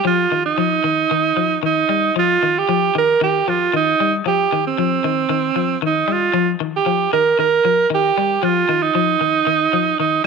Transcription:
0.05 F3 F4
0.32 D#3
0.46 D#4
0.58 F3
0.84 D#3
1.11 D#3
1.37 F3
1.63 D#3 D#4
1.89 G3
2.16 F3 F4
2.43 D#3
2.58 G4
2.69 F3
2.95 D#3 A#4
3.21 D#3 G4
3.48 F3 F4
3.74 D#3 D#4
4.00 G3
4.26 F3 G4
4.52 D#3
4.67 C4
4.78 F3
5.04 D#3
5.29 D#3
5.56 F3
5.82 D#3 D#4
6.08 G3
6.13 F4
6.34 F3
6.60 D#3
6.76 G4
6.86 F3
7.13 D#3 A#4
7.39 D#3 A#4
7.65 F3
7.90 D#3
7.95 G4
8.18 G3
8.43 F3 F4
8.69 D#3
8.82 D#4
8.95 F3
9.21 D#3
9.47 D#3
9.73 F3
9.99 D#3 D#4

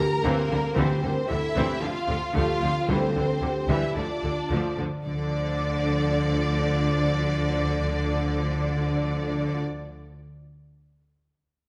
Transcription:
Already playing: D3 G4 A#4 A#5
0.23 D2 D3 E3 A#3 C4 G4 A#4
0.50 D2 C3 D3 G3 A4
0.75 D2 D3 E3 C4 G4 C5
1.03 D2 C3 D3 G3 A#4
1.27 D2 C3 D3 E3 A4 E5
1.31 E4
1.56 D2 D3 E3 C4 G4
1.81 D2 C3 D3 F3 F4 F5
2.07 D2 C3 D3 A4
2.34 D2 D3 F3 A3 F4 G4 F5
2.61 D2 C3 D3 F3 F4
2.88 D2 D3 E3 G3 C4 A4 C5
3.15 D2 C3 D3 E3
3.41 D2 C3 D3 G4
3.68 D2 D3 E3 G3 E4 E5
3.95 D2 D3 F3 D4 F4 D5
4.23 D2 D3
4.50 D2 D3 F3 A3
4.78 D2 D3 F3
5.04 D2 D3 F3 D4 D5

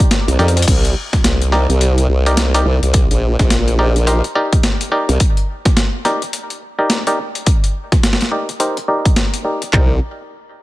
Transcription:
Already playing: D#4 G4 A#4 D5
0.00 closed hi-hat
0.11 snare, closed hi-hat
0.28 C2, closed hi-hat
0.39 F2 D#4 G4 A#4 D5, closed hi-hat
0.48 closed hi-hat
0.57 closed hi-hat
0.62 closed hi-hat
0.68 C2, kick, closed hi-hat, crash
0.85 closed hi-hat
1.13 kick, snare, closed hi-hat
1.24 C2, snare, closed hi-hat
1.42 closed hi-hat
1.52 D#4 G4 A#4 D5, snare
1.69 C2, closed hi-hat
1.81 closed hi-hat
1.98 closed hi-hat
2.09 C2
2.26 D#4 G4 A#4 D5, closed hi-hat
2.37 snare, closed hi-hat
2.54 D#4 G4 A#4 D5, closed hi-hat
2.65 C2
2.82 C2, closed hi-hat
2.94 kick, closed hi-hat
3.10 A#1, closed hi-hat
3.39 A#1, kick, snare, closed hi-hat
3.50 snare, closed hi-hat
3.68 closed hi-hat
3.79 D#4 G4 A#4 D5
3.96 closed hi-hat
4.07 D#4 G4 A#4 C5, closed hi-hat
4.24 closed hi-hat
4.35 D#4 G4 A#4 D5
4.53 kick, closed hi-hat
4.63 snare, closed hi-hat
4.81 closed hi-hat
4.92 D#4 G4 A#4 D5
5.09 C2, closed hi-hat
5.20 kick, closed hi-hat
5.37 closed hi-hat
5.65 kick, snare, closed hi-hat
5.77 snare, closed hi-hat
6.05 D#4 G4 A#4 D5, snare, closed hi-hat
6.22 closed hi-hat
6.33 closed hi-hat
6.50 closed hi-hat
6.79 D#4 G4 A#4 D5
6.90 snare, closed hi-hat
7.07 D#4 G4 A#4 D5, closed hi-hat
7.35 closed hi-hat
7.46 kick, closed hi-hat
7.64 closed hi-hat
7.92 kick, snare, closed hi-hat
8.03 snare, closed hi-hat
8.13 snare
8.21 snare, closed hi-hat
8.31 D#4 G4 A#4 D5
8.49 closed hi-hat
8.60 D#4 G4 A#4 C5, closed hi-hat
8.77 closed hi-hat
8.88 D#4 G4 A#4 D5
9.05 kick, closed hi-hat
9.16 snare, closed hi-hat
9.34 closed hi-hat
9.45 D#4 G4 A#4 D5
9.62 closed hi-hat
9.73 C2 D#4 G4 A#4 D5, kick, clap

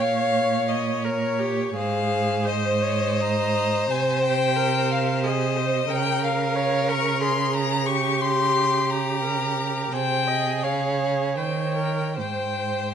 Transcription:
Already playing: A#2 C#5
0.00 F5
0.69 D#5
1.04 A#4 C#5
1.39 G4
1.74 G#2 G#4 C5 F5
2.45 C5 D#5
2.82 C#5
3.20 D#5 A#5
3.90 C3 C5 G#5
4.23 G5
4.56 A#4
4.91 F5
5.23 G#4 D#5
5.57 C5
5.89 C#3 A#4 G5
6.23 F5
6.56 C#5
6.89 A#4 C#6
7.21 G#4 C6
7.53 A#5
7.86 G4 C#6
8.21 C6
8.90 A#5
9.23 A#4
9.92 C3 G#4 C5 G5
10.27 D#5
10.63 C#3 C#5 F5
11.36 D#3 C5 C#5 G5
11.77 A#4
12.18 G#2 C5 G5

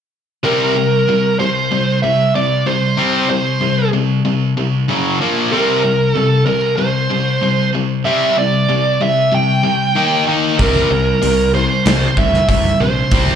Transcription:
0.43 C3 G3 C4 A#4
0.76 C3 G3
1.09 C3 G3
1.39 C3 G3 C5
1.72 C3 G3
2.03 C3 G3 E5
2.35 C3 G3 D5
2.66 C3 G3 C5
2.97 C3 G3 C4
3.29 C3 G3 C5
3.61 C3 G3
3.93 C3 G3
4.25 C3 G3
4.57 C3 G3
4.88 F#2 C#3 F#3
5.21 A#2 F3 A#3
5.52 C3 G3 C4 A#4
5.84 C3 G3
6.13 C3 G3 A4
6.46 C3 G3 A#4
6.77 C3 G3 C5
7.10 C3 G3
7.43 C3 G3
7.75 C3 G3
8.05 C3 G3 C4 E5
8.38 C3 G3 D5
8.69 C3 G3
9.01 C3 G3 E5
9.32 C3 G3 G5
9.63 C3 G3
9.95 D#3 A#3 D#4
10.27 D#3 A#3 D#4
10.59 C2 C3 G3 C4 A#4, kick, open hi-hat
10.91 C2 C3 G3
11.22 C2 C3 G3, open hi-hat
11.55 C3 G3 C5
11.85 C2 C3 G3, snare, open hi-hat
12.17 C2 C3 G3 E5, kick
12.34 snare
12.49 C2 C3 G3 E5, kick, open hi-hat
12.80 A#1 C3 G3 C5
13.11 C2 C3 G3 C4, kick, open hi-hat

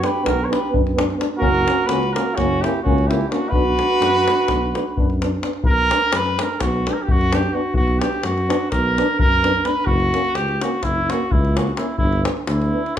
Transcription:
0.01 B3 D4 G4, davul high
0.06 B4
0.23 B1 B3 D4 F#4 A#4, davul high, davul low
0.42 A#4 C#5
0.49 B3 D4 G4 B4, davul high
0.71 B3 D4, davul low
0.75 F#2
0.87 davul high
0.95 B3 D4, davul high
1.10 davul high
1.16 B3 D4
1.21 davul high
1.38 F#1 A#3 C#4 F#4 A#4, davul low
1.55 davul high
1.64 A#3, davul high
1.68 C#4
1.78 davul high
1.85 C#2 A#3 F#4 B4, davul high
1.90 C#4
2.03 davul high
2.13 A#3 C#4 F#4 A#4, davul high
2.35 F#1 A#3 C#4 F#4, davul high, davul low
2.61 C#4 E4 G4, davul high
2.65 A#3
2.83 C#2 A#3 C#4 F#4, davul low
2.98 davul high
3.07 C#4 E4 G4, davul high
3.11 A#3
3.21 davul high
3.29 A#3 C#4 D4 F#4, davul high
3.49 B1 B3 D4 F#4 B4, davul low
3.65 davul high
3.78 B3 D4, davul high
3.90 davul high
4.00 F#2 B3 D4, davul high
4.15 davul high
4.27 B3 D4, davul high
4.48 B1 B3 D4, davul high, davul low
4.75 B3 D4, davul high
4.97 F#2 B3 D4, davul low
5.10 davul high
5.21 B3 D4, davul high
5.42 B3 D4, davul high
5.53 davul high
5.63 B1 A#4, davul low
5.78 davul high
5.90 B3 D4, davul high
6.02 davul high
6.13 F#2 B4, davul high
6.26 davul high
6.39 B3 D4 A#4, davul high
6.60 B1 F#4, davul high, davul low
6.87 B3 D4 G4, davul high
6.93 A#4
7.02 G4
7.08 F#2 F#4, davul low
7.21 davul high
7.32 B3 D4 G4, davul high
7.43 davul high
7.53 B3 D4 F#4
7.74 B1 F#4, davul low
7.87 davul high
7.99 B3 D4 G4, davul high
8.13 davul high
8.23 F#2 F#4, davul high
8.38 davul high
8.48 B3 D4, davul high
8.71 B1 A#4, davul high, davul low
8.97 B3 D4, davul high
9.19 F#2 A#4, davul low
9.33 davul high
9.43 B3 D4, davul high
9.54 davul high
9.64 B3 D4 B4, davul high
9.85 F#1 F#4, davul low
10.00 davul high
10.13 A#3 C#4, davul high
10.25 davul high
10.34 C#2 G4, davul high
10.48 davul high
10.61 A#3 C#4 F#4, davul high
10.82 F#1 E4, davul high, davul low
11.10 A#3 C#4 F#4, davul high
11.31 C#2 E4, davul low
11.45 davul high
11.56 A#3 C#4 F#4, davul high
11.67 davul high
11.73 F#4, davul high
11.78 A#3 C#4 E4
11.98 G1 E4, davul low
12.13 davul high
12.24 B3 D4, davul high
12.37 davul high
12.47 D2 E4, davul high
12.62 davul high
12.72 B3 D4
12.86 davul high

